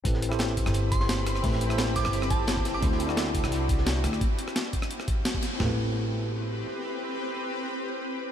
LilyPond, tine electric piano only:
\new Staff \with { instrumentName = "Tine electric piano" } { \time 4/4 \key a \dorian \tempo 4 = 173 <c' e' g' a' b'>8. <c' e' g' a' c''>2.~ <c' e' g' a' c''>16 | <c' e' g' a' b'>8. <c' e' g' a' c''>2.~ <c' e' g' a' c''>16 | <d' e' fis' a' c''>8. <d' e' fis' a' d''>2.~ <d' e' fis' a' d''>16 | r1 |
<c' e' g' a' b'>1~ | <c' e' g' a' b'>1 | }